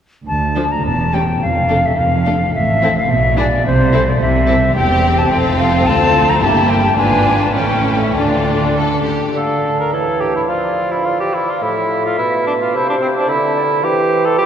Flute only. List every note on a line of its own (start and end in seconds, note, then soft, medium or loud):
0.27 0.73 A5 medium
0.72 0.85 A#5 soft
0.85 1.15 A5 medium
1.14 1.41 G5 medium
1.42 1.87 F5 medium
1.85 1.99 E5 soft
1.98 2.54 F5 medium
2.54 2.95 E5 medium
2.98 3.11 F5 medium
3.10 3.38 E5 medium
3.38 3.65 D5 medium
3.67 4.10 C5 medium
4.09 4.20 D5 medium
4.21 4.75 E5 medium
4.75 5.20 G5 medium
5.18 5.30 A5 medium
5.31 5.37 G5 medium
5.59 5.87 F5 medium
5.86 6.31 A5 medium
6.29 6.41 A#5 soft
6.42 6.70 A5 medium
6.69 6.97 G5 medium
6.98 7.44 G#5 medium
7.42 7.54 A5 soft
7.55 7.99 G5 medium
8.02 8.16 E5 soft
8.16 8.75 D5 soft
9.35 9.95 F5 soft
9.93 10.51 C#5 soft
10.49 11.04 D5 soft
11.05 11.63 D5 soft
11.62 12.73 E5 soft
12.74 13.30 C5 soft
13.29 13.55 E5 soft
13.56 13.62 D5 soft
13.83 14.37 C5 soft
14.39 14.46 C5 soft